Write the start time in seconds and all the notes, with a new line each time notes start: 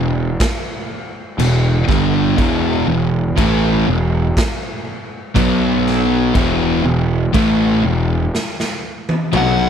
Already playing: E1 E2 B2
0.40 kick, snare, crash
1.38 E1 E2 B2, crash
1.88 G1 G2 D3 G3, kick, snare
2.38 E1 E2 B2 E3, kick, crash
2.87 E1 E2 B2
3.37 A1 A2 E3 A3, kick, crash
3.87 E1 E2 B2
4.37 kick, snare, crash
5.35 B1 B2 F#3 B3, kick, crash
5.87 snare
6.34 E1 E2 B2 E3, kick, crash
6.84 E1 E2 B2
7.33 A1 A2 E3 A3, kick, crash
7.83 E1 E2 B2
8.35 snare
8.60 snare
9.09 high tom
9.33 B1 B2 F#3 B3, mid tom
9.37 F#5